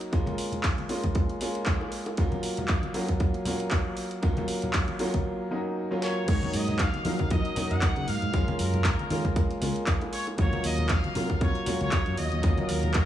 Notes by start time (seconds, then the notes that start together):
Already playing: C#4 D#4
0.01 closed hi-hat
0.12 G#3 A#3 C#4 F4, kick, closed hi-hat
0.27 closed hi-hat, high conga, low conga
0.38 open hi-hat
0.52 closed hi-hat, low conga
0.63 kick, clap, closed hi-hat
0.78 closed hi-hat, high conga
0.89 G#3 A#3 C#4 F4, open hi-hat, high bongo
1.04 kick, closed hi-hat, high conga
1.15 kick, closed hi-hat
1.29 closed hi-hat
1.40 G#3 A#3 C#4 F4, open hi-hat
1.55 closed hi-hat
1.66 kick, clap, closed hi-hat
1.81 high bongo
1.92 open hi-hat
2.06 closed hi-hat, high bongo
2.17 F#3 A#3 C#4 F4, kick, closed hi-hat
2.32 closed hi-hat, high conga, low conga
2.43 open hi-hat
2.57 closed hi-hat, low conga
2.68 kick, clap, closed hi-hat
2.83 closed hi-hat, high conga
2.94 F#3 A#3 C#4 F4, open hi-hat, high bongo
3.08 kick, closed hi-hat, high conga
3.20 kick, closed hi-hat
3.34 closed hi-hat
3.45 F#3 A#3 C#4 F4, open hi-hat, low conga
3.60 closed hi-hat
3.71 kick, clap, closed hi-hat
3.97 open hi-hat
4.11 closed hi-hat
4.22 F#3 A#3 C#4 F4, kick, closed hi-hat
4.37 closed hi-hat, high conga, low conga
4.48 open hi-hat
4.62 closed hi-hat, low conga
4.73 kick, clap, closed hi-hat
4.88 closed hi-hat, high conga
4.99 F#3 A#3 C#4 F4, open hi-hat, high bongo
5.14 kick, closed hi-hat, high conga
5.51 F#3 A#3 C#4 D#4
5.91 F#3 A#3 C#4 F4
6.02 C#5, snare
6.26 G#2 F#3 A#3 C#4 D#4 C#5, kick, closed hi-hat, crash
6.42 closed hi-hat, high conga, low conga
6.53 G#2 D#5, open hi-hat
6.68 closed hi-hat, low conga
6.79 F5, kick, clap, closed hi-hat
6.94 closed hi-hat, high conga
7.05 F3 F#3 A#3 C#4 D#4, open hi-hat, high bongo
7.19 kick, closed hi-hat, high conga
7.30 F3 D#5, kick, closed hi-hat
7.45 closed hi-hat
7.55 F#3 A#3 C#4 D#4, open hi-hat, low conga
7.71 F#2 F#5, closed hi-hat
7.81 kick, clap, closed hi-hat
7.96 C#3, closed hi-hat
8.08 G#2 F5, open hi-hat
8.22 G#2, closed hi-hat
8.32 F#2 G#3 A#3 C#4 F4, kick, closed hi-hat
8.48 closed hi-hat, high conga, low conga
8.59 F#2 A#4, open hi-hat
8.74 closed hi-hat, low conga
8.84 kick, clap, closed hi-hat
8.99 closed hi-hat, high conga
9.10 D#3 G#3 A#3 C#4 F4, open hi-hat, high bongo
9.25 kick, closed hi-hat, high conga
9.36 kick, closed hi-hat
9.51 closed hi-hat
9.61 C#2 G#3 A#3 C#4 F4, open hi-hat
9.76 closed hi-hat
9.87 kick, clap, closed hi-hat
10.01 closed hi-hat, high bongo
10.13 C#5, open hi-hat
10.27 closed hi-hat, high bongo
10.37 D#2 F#3 A#3 C#4 F4 C#5, kick, closed hi-hat
10.53 closed hi-hat, high conga, low conga
10.64 D#2 D#5, open hi-hat
10.78 closed hi-hat, low conga
10.89 F5, kick, clap, closed hi-hat
11.04 closed hi-hat, high conga
11.15 C3 F#3 A#3 C#4 F4, open hi-hat, high bongo
11.30 kick, closed hi-hat, high conga
11.41 C3 C#5, kick, closed hi-hat
11.55 closed hi-hat
11.66 F#3 A#3 C#4 F4, open hi-hat, low conga
11.81 C#2 C#5, closed hi-hat
11.91 kick, clap, closed hi-hat
12.06 F#2, closed hi-hat
12.17 D#2 D#5, open hi-hat
12.32 D#2, closed hi-hat
12.42 D#2 F#3 A#3 C#4 F4, kick, closed hi-hat
12.58 closed hi-hat, high conga, low conga
12.69 D#2 A#4, open hi-hat
12.83 closed hi-hat, low conga
12.94 kick, clap, closed hi-hat